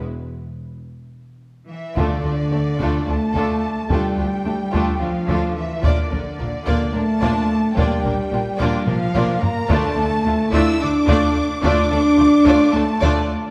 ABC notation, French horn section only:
X:1
M:7/8
L:1/8
Q:1/4=109
K:Ephr
V:1 name="French horn section" clef=bass
z6 E, | [K:Dm] D,4 A,3 | G,4 F,2 E, | D,4 A,3 |
G,4 F,2 B, | A,3 E D3 | D4 A,2 z |]